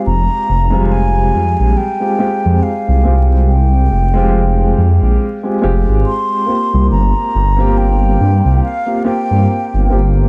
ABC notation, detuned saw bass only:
X:1
M:4/4
L:1/16
Q:"Swing 16ths" 1/4=70
K:Fm
V:1 name="Detuned saw bass" clef=bass
F,,, z F,,,4 F,, B,,, z3 F,, z C,, C,,2- | C,,2 F,,,4 F,, B,,, z2 F,,, A,,, z3 C,, | G,,, z G,,,4 G,, C,, z3 G,, z G,,, G,,,2 |]